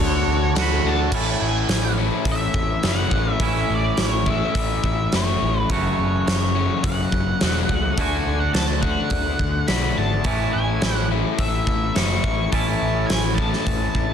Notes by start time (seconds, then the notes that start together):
Already playing: D3 A3 D4 F#4 C#5 C#6
0.00 D2
0.27 D2
0.56 D2 D3 A3 D4 F#4, snare, crash
0.62 B5
0.85 D2 D3 A3 D4 F#4 A5
1.12 A1 A2 E3 A3 C#4 E4 A5, kick, crash
1.41 A1 G#5
1.68 A1, snare, open hi-hat
1.97 A2 E3 A3 C#4 E4
2.25 A1, kick, open hi-hat
2.32 E5
2.54 A1, kick
2.83 F#1 A2 E3 A3 C#4 E4, snare, open hi-hat
2.88 F#5
3.11 A1, kick
3.32 E5
3.40 A1 A2 E3 A3 C#4 E4, kick, open hi-hat
3.45 E5
3.70 A1
3.75 D5
3.97 A1 C#5, snare, open hi-hat
4.26 A2 E3 A3 C#4 E4, kick
4.30 E5
4.55 A1, kick, open hi-hat
4.84 A1, kick
5.12 F#1 A2 E3 A3 C#4 E4 C#5, snare, open hi-hat
5.42 A1
5.70 F#1 F#2 C#3 E3 F#3 A3 C#4 F#4 C#5, kick, open hi-hat
5.99 F#1
6.27 F#1 C#5, snare, open hi-hat
6.55 F#2 C#3 F#3 A3 C#4 F#4
6.84 F#1 F#5, kick, open hi-hat
7.12 F#1, kick
7.41 E1 F#2 C#3 F#3 A3 C#4 F#4, snare, open hi-hat
7.69 C#2, kick
7.98 D2 D3 A3 D4 F#4 G#5, kick, open hi-hat
8.27 D2
8.40 F#5
8.53 D2 A5, snare, open hi-hat
8.82 D3 A3 D4 F#4 F#5, kick
9.10 D2, kick, open hi-hat
9.39 D2, kick
9.68 B1 D3 A3 D4 F#4 B5, snare, open hi-hat
9.98 G#1 A5
10.24 A1 A2 E3 A3 C#4 E4, kick, open hi-hat
10.53 A1 G#5
10.82 A1, snare, open hi-hat
10.95 F#5
11.10 A2 E3 A3 C#4 E4
11.39 A1 E5, kick, open hi-hat
11.67 A1, kick
11.95 F#1 A2 E3 A3 C#4 E4 C#6, snare, open hi-hat
12.24 A1, kick
12.51 A1 A2 E3 A3 C#4 E4 A5, kick, open hi-hat
12.82 A1
13.07 G#5, snare, open hi-hat
13.11 A1
13.35 A3 C#4 E4 A5, kick
13.40 A2 E3
13.53 snare
13.67 A1, kick, open hi-hat
13.95 A1, kick